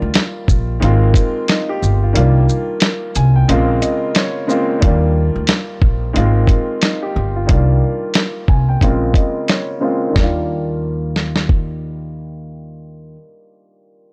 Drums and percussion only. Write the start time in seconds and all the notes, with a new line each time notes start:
0.14 snare, closed hi-hat
0.48 kick, shaker
0.82 closed hi-hat
1.14 kick, closed hi-hat, shaker
1.48 snare, closed hi-hat
1.83 shaker
2.15 closed hi-hat
2.49 shaker
2.80 snare, closed hi-hat
3.15 closed hi-hat, shaker
3.49 closed hi-hat
3.82 closed hi-hat, shaker
4.15 snare, closed hi-hat
4.50 shaker
4.82 kick, closed hi-hat
5.47 snare, closed hi-hat
5.82 kick
6.16 closed hi-hat
6.47 kick, closed hi-hat
6.82 snare, closed hi-hat
7.49 kick, closed hi-hat
8.14 snare, closed hi-hat
8.48 kick
8.81 kick, closed hi-hat
9.14 kick, closed hi-hat
9.48 snare, closed hi-hat
10.16 kick, snare
11.16 snare
11.36 snare
11.49 kick